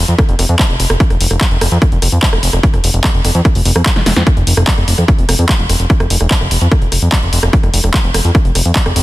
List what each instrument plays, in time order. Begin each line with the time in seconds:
0.08 analog synth bass F2, closed hi-hat
0.18 kick, cross-stick, closed hi-hat
0.29 analog synth bass F1, closed hi-hat
0.39 analog synth bass F1, cross-stick, open hi-hat
0.49 analog synth bass F2, closed hi-hat
0.59 kick, cross-stick, clap, closed hi-hat
0.70 analog synth bass F1, closed hi-hat
0.80 analog synth bass F1, open hi-hat
0.90 analog synth bass F1, cross-stick, closed hi-hat
1.00 kick, closed hi-hat
1.10 analog synth bass F1, cross-stick, closed hi-hat
1.21 analog synth bass F1, open hi-hat
1.31 analog synth bass F1, cross-stick, closed hi-hat
1.41 kick, clap, closed hi-hat
1.51 analog synth bass F1, closed hi-hat
1.61 analog synth bass F1, cross-stick, open hi-hat
1.72 analog synth bass F2, closed hi-hat
1.82 kick, cross-stick, closed hi-hat
1.92 analog synth bass F1, closed hi-hat
2.02 analog synth bass F1, cross-stick, open hi-hat
2.12 analog synth bass F2, closed hi-hat
2.23 kick, clap, closed hi-hat
2.33 analog synth bass F1, cross-stick, closed hi-hat
2.43 analog synth bass F1, open hi-hat
2.53 analog synth bass F1, cross-stick, closed hi-hat
2.63 kick, closed hi-hat
2.74 analog synth bass F1, cross-stick, closed hi-hat
2.84 analog synth bass F1, open hi-hat
2.94 analog synth bass F1, closed hi-hat
3.04 kick, cross-stick, clap, closed hi-hat
3.14 analog synth bass F1, closed hi-hat
3.25 analog synth bass F1, cross-stick, open hi-hat
3.35 analog synth bass F2, closed hi-hat
3.45 kick, cross-stick, closed hi-hat
3.55 analog synth bass F1, open hi-hat
3.65 analog synth bass F1, open hi-hat
3.76 analog synth bass F2, cross-stick, closed hi-hat
3.86 kick, clap, closed hi-hat
3.96 analog synth bass F1, snare, closed hi-hat
4.06 analog synth bass F1, snare, open hi-hat
4.16 analog synth bass F2, snare, closed hi-hat
4.27 kick, cross-stick, closed hi-hat
4.37 analog synth bass F1, closed hi-hat
4.47 analog synth bass F1, open hi-hat
4.57 analog synth bass F1, cross-stick, closed hi-hat
4.67 kick, clap, closed hi-hat
4.78 analog synth bass F1, cross-stick, closed hi-hat
4.88 analog synth bass F1, open hi-hat
4.98 analog synth bass F2, cross-stick, closed hi-hat
5.08 kick, closed hi-hat
5.19 analog synth bass F1, closed hi-hat
5.29 analog synth bass F1, cross-stick, open hi-hat
5.39 analog synth bass F2, closed hi-hat
5.49 kick, cross-stick, clap, closed hi-hat
5.59 analog synth bass F1, closed hi-hat
5.70 analog synth bass F1, cross-stick, open hi-hat
5.80 analog synth bass F1, closed hi-hat
5.90 kick, closed hi-hat
6.00 analog synth bass F1, cross-stick, closed hi-hat
6.10 analog synth bass F1, open hi-hat
6.21 analog synth bass F1, cross-stick
6.31 kick, clap, closed hi-hat
6.41 analog synth bass F1, cross-stick, closed hi-hat
6.51 analog synth bass F1, open hi-hat
6.61 analog synth bass F2, closed hi-hat
6.72 kick, cross-stick, closed hi-hat
6.82 analog synth bass F1, closed hi-hat
6.92 analog synth bass F1, cross-stick, open hi-hat
7.02 analog synth bass F2, closed hi-hat
7.12 kick, cross-stick, clap, closed hi-hat
7.23 analog synth bass F1, closed hi-hat
7.33 analog synth bass F1, open hi-hat
7.43 analog synth bass F1, cross-stick, closed hi-hat
7.53 kick, closed hi-hat
7.63 analog synth bass F1, cross-stick, closed hi-hat
7.74 analog synth bass F1, open hi-hat
7.84 analog synth bass F1, cross-stick, closed hi-hat
7.94 kick, clap, closed hi-hat
8.04 analog synth bass F1, closed hi-hat
8.14 analog synth bass F1, cross-stick, open hi-hat
8.25 analog synth bass F2, closed hi-hat
8.35 kick, cross-stick, closed hi-hat
8.45 analog synth bass F1, closed hi-hat
8.55 analog synth bass F1, cross-stick, open hi-hat
8.65 analog synth bass F2, closed hi-hat
8.76 kick, clap, closed hi-hat
8.86 analog synth bass F1, cross-stick, closed hi-hat
8.96 analog synth bass F1, open hi-hat